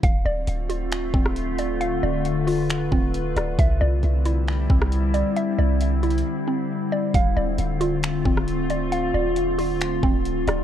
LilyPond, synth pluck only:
\new Staff \with { instrumentName = "Synth pluck" } { \time 4/4 \key d \dorian \tempo 4 = 135 f''8 d''4 f'4 c'4 d''8 | f''8 d''4 f'4 c'4 d''8 | e''8 d''4 e'4 c'4 d''8 | e''8 d''4 e'4 c'4 d''8 |
f''8 d''4 f'4 c'4 d''8 | f''8 d''4 f'4 c'4 d''8 | }